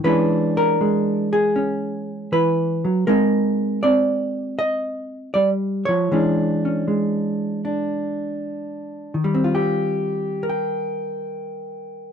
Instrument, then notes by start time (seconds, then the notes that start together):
hollow-body jazz guitar
0.04 E3 G#3 C#4 D4 B4
0.57 A#4
0.81 G#3
1.33 G#4
1.56 C#4
2.32 E3 B4
2.85 F#3
3.07 G#3 C4 D#4 A#4
3.83 C4 D5
4.59 D#5
5.34 G3 D5
5.85 F3 C#5
6.11 E3 G#3 C#4 D4
6.65 C#4
6.88 G#3
7.65 D4
9.14 D#3
9.24 G3
9.34 C4
9.44 F4
9.55 G4
10.43 A#4
10.49 G5